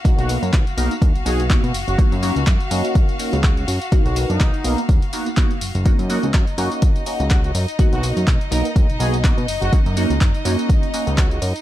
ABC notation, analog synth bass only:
X:1
M:4/4
L:1/16
Q:"Swing 16ths" 1/4=124
K:F#
V:1 name="Analog synth bass" clef=bass
B,,, B,,,2 F,, B,,, z B,,, z D,, B,,, B,,,3 B,, F,,, F,,, | F,, F,,2 C,, F,, z F,, z4 C,,3 F,, z | B,,, B,,,2 F,, B,,, z B,,, z D,, z4 z F,,, F,,,- | F,,, F,,2 C,, F,, z F,, z4 C,,3 F,, z |
B,,, B,,,2 F,, B,,, z B,,, z D,, B,,, B,,,3 B,, F,,, F,,, | F,, F,,2 C,, F,, z F,, z4 C,,3 F,, z |]